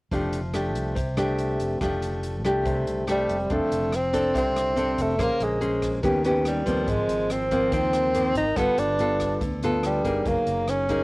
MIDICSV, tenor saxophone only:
0, 0, Header, 1, 2, 480
1, 0, Start_track
1, 0, Key_signature, -1, "major"
1, 0, Tempo, 422535
1, 133, Time_signature, 4, 2, 24, 8
1, 12538, End_track
2, 0, Start_track
2, 0, Title_t, "Tenor saxophone"
2, 0, Program_c, 0, 66
2, 3530, Note_on_c, 0, 55, 74
2, 4012, Note_on_c, 0, 57, 85
2, 4030, Note_off_c, 0, 55, 0
2, 4491, Note_on_c, 0, 60, 72
2, 4508, Note_off_c, 0, 57, 0
2, 4955, Note_off_c, 0, 60, 0
2, 4969, Note_on_c, 0, 60, 80
2, 5698, Note_on_c, 0, 57, 77
2, 5715, Note_off_c, 0, 60, 0
2, 5936, Note_on_c, 0, 58, 93
2, 5953, Note_off_c, 0, 57, 0
2, 6175, Note_on_c, 0, 56, 74
2, 6192, Note_off_c, 0, 58, 0
2, 6875, Note_off_c, 0, 56, 0
2, 7360, Note_on_c, 0, 55, 70
2, 7832, Note_on_c, 0, 56, 87
2, 7849, Note_off_c, 0, 55, 0
2, 8309, Note_on_c, 0, 60, 76
2, 8326, Note_off_c, 0, 56, 0
2, 8777, Note_off_c, 0, 60, 0
2, 8783, Note_on_c, 0, 60, 86
2, 9453, Note_off_c, 0, 60, 0
2, 9503, Note_on_c, 0, 63, 82
2, 9733, Note_on_c, 0, 59, 91
2, 9750, Note_off_c, 0, 63, 0
2, 9984, Note_on_c, 0, 62, 82
2, 10001, Note_off_c, 0, 59, 0
2, 10698, Note_off_c, 0, 62, 0
2, 11200, Note_on_c, 0, 55, 78
2, 11679, Note_on_c, 0, 58, 97
2, 11696, Note_off_c, 0, 55, 0
2, 12142, Note_on_c, 0, 61, 79
2, 12159, Note_off_c, 0, 58, 0
2, 12538, Note_off_c, 0, 61, 0
2, 12538, End_track
0, 0, End_of_file